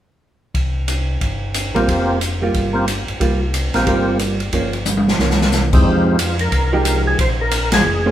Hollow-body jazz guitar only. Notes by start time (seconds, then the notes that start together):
1.75 G3 A#3 F4
2.42 G3 A#3 F4
3.20 G3 A#3 F4
3.87 G3 A#3 F4
4.53 F3 A#3 C#4
5.20 E3 A#3 C#4
6.73 F3 G#3 D#4 G4
8.06 A#3 C#4 G#4 C5